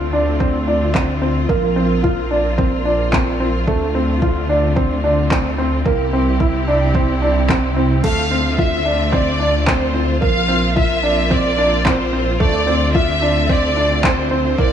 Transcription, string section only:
0, 0, Header, 1, 2, 480
1, 0, Start_track
1, 0, Key_signature, -1, "minor"
1, 0, Tempo, 545455
1, 1316, Time_signature, 4, 2, 24, 8
1, 12958, End_track
2, 0, Start_track
2, 0, Title_t, "String section"
2, 0, Program_c, 0, 48
2, 0, Note_on_c, 0, 50, 60
2, 0, Note_on_c, 0, 57, 55
2, 0, Note_on_c, 0, 60, 59
2, 0, Note_on_c, 0, 65, 69
2, 1297, Note_off_c, 0, 50, 0
2, 1297, Note_off_c, 0, 57, 0
2, 1314, Note_on_c, 0, 58, 62
2, 3198, Note_off_c, 0, 60, 0
2, 3216, Note_off_c, 0, 58, 0
2, 3233, Note_on_c, 0, 60, 62
2, 3234, Note_on_c, 0, 57, 57
2, 3235, Note_on_c, 0, 50, 71
2, 5120, Note_off_c, 0, 65, 0
2, 5135, Note_off_c, 0, 57, 0
2, 5136, Note_off_c, 0, 50, 0
2, 5159, Note_on_c, 0, 64, 60
2, 5160, Note_on_c, 0, 48, 69
2, 5160, Note_on_c, 0, 67, 68
2, 7058, Note_off_c, 0, 48, 0
2, 7058, Note_off_c, 0, 64, 0
2, 7058, Note_off_c, 0, 67, 0
2, 7075, Note_on_c, 0, 57, 62
2, 7077, Note_on_c, 0, 50, 68
2, 7077, Note_on_c, 0, 65, 72
2, 8959, Note_off_c, 0, 60, 0
2, 8976, Note_off_c, 0, 57, 0
2, 8977, Note_off_c, 0, 50, 0
2, 8996, Note_on_c, 0, 60, 61
2, 8997, Note_on_c, 0, 58, 68
2, 10897, Note_off_c, 0, 58, 0
2, 10914, Note_on_c, 0, 57, 64
2, 10915, Note_on_c, 0, 50, 67
2, 12801, Note_off_c, 0, 65, 0
2, 12815, Note_off_c, 0, 57, 0
2, 12816, Note_off_c, 0, 50, 0
2, 12837, Note_on_c, 0, 67, 77
2, 12839, Note_on_c, 0, 64, 65
2, 12840, Note_on_c, 0, 48, 69
2, 12958, Note_off_c, 0, 48, 0
2, 12958, Note_off_c, 0, 60, 0
2, 12958, Note_off_c, 0, 64, 0
2, 12958, Note_off_c, 0, 67, 0
2, 12958, End_track
0, 0, End_of_file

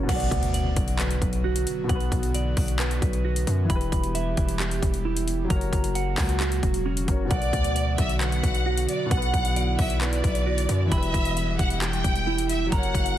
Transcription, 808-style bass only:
0, 0, Header, 1, 2, 480
1, 0, Start_track
1, 0, Key_signature, 2, "minor"
1, 0, Tempo, 451128
1, 95, Time_signature, 4, 2, 24, 8
1, 14025, End_track
2, 0, Start_track
2, 0, Title_t, "808-style bass"
2, 0, Program_c, 0, 38
2, 95, Note_on_c, 0, 35, 113
2, 325, Note_off_c, 0, 35, 0
2, 333, Note_on_c, 0, 38, 106
2, 795, Note_off_c, 0, 38, 0
2, 814, Note_on_c, 0, 35, 107
2, 1275, Note_off_c, 0, 35, 0
2, 1294, Note_on_c, 0, 35, 104
2, 1755, Note_off_c, 0, 35, 0
2, 2014, Note_on_c, 0, 35, 116
2, 2245, Note_off_c, 0, 35, 0
2, 2253, Note_on_c, 0, 35, 103
2, 2715, Note_off_c, 0, 35, 0
2, 2734, Note_on_c, 0, 35, 101
2, 3195, Note_off_c, 0, 35, 0
2, 3214, Note_on_c, 0, 35, 101
2, 3675, Note_off_c, 0, 35, 0
2, 3694, Note_on_c, 0, 42, 105
2, 3925, Note_off_c, 0, 42, 0
2, 3935, Note_on_c, 0, 28, 114
2, 4165, Note_off_c, 0, 28, 0
2, 4173, Note_on_c, 0, 28, 105
2, 4634, Note_off_c, 0, 28, 0
2, 4654, Note_on_c, 0, 28, 107
2, 5115, Note_off_c, 0, 28, 0
2, 5134, Note_on_c, 0, 28, 103
2, 5825, Note_off_c, 0, 28, 0
2, 5854, Note_on_c, 0, 30, 111
2, 6084, Note_off_c, 0, 30, 0
2, 6092, Note_on_c, 0, 30, 105
2, 6554, Note_off_c, 0, 30, 0
2, 6574, Note_on_c, 0, 37, 107
2, 7035, Note_off_c, 0, 37, 0
2, 7053, Note_on_c, 0, 28, 105
2, 7514, Note_off_c, 0, 28, 0
2, 7534, Note_on_c, 0, 30, 107
2, 7764, Note_off_c, 0, 30, 0
2, 7774, Note_on_c, 0, 35, 115
2, 8005, Note_off_c, 0, 35, 0
2, 8013, Note_on_c, 0, 38, 108
2, 8475, Note_off_c, 0, 38, 0
2, 8494, Note_on_c, 0, 35, 107
2, 8955, Note_off_c, 0, 35, 0
2, 8974, Note_on_c, 0, 35, 101
2, 9435, Note_off_c, 0, 35, 0
2, 9694, Note_on_c, 0, 35, 111
2, 9925, Note_off_c, 0, 35, 0
2, 9934, Note_on_c, 0, 35, 103
2, 10395, Note_off_c, 0, 35, 0
2, 10415, Note_on_c, 0, 35, 106
2, 10875, Note_off_c, 0, 35, 0
2, 10894, Note_on_c, 0, 35, 108
2, 11355, Note_off_c, 0, 35, 0
2, 11375, Note_on_c, 0, 42, 104
2, 11605, Note_off_c, 0, 42, 0
2, 11615, Note_on_c, 0, 28, 114
2, 11845, Note_off_c, 0, 28, 0
2, 11853, Note_on_c, 0, 28, 107
2, 12315, Note_off_c, 0, 28, 0
2, 12334, Note_on_c, 0, 28, 110
2, 12795, Note_off_c, 0, 28, 0
2, 12814, Note_on_c, 0, 28, 101
2, 13506, Note_off_c, 0, 28, 0
2, 13535, Note_on_c, 0, 30, 109
2, 13765, Note_off_c, 0, 30, 0
2, 13773, Note_on_c, 0, 30, 106
2, 14025, Note_off_c, 0, 30, 0
2, 14025, End_track
0, 0, End_of_file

